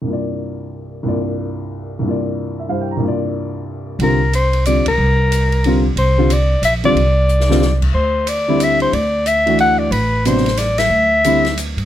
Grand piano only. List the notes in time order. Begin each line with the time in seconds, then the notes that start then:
0.02 C2 G2
0.07 A#3 F4
0.13 D5
1.03 C2 G2 A#3
1.07 F4 D5
1.99 C2 G2
2.05 A#3 F4
2.11 D5
2.59 E5
2.68 G2 G3 E4 C5 F5
2.81 G5
2.91 A#5
2.97 C2 G2
3.02 A#3 F4
3.08 D5
4.01 D3 G3 C4 F4
4.67 D3 G3 C4 F4
5.65 D3 G3 C4 F4
6.18 D3 G3 C4 F4
6.83 D3 G3 C4 F4
7.49 D3 G3 C4 F4
8.48 D3 G3 C4 E4
9.46 E3 A3 D4 F#4
10.25 C3 F#3 B3 D4
11.25 D3 G3 C4 E4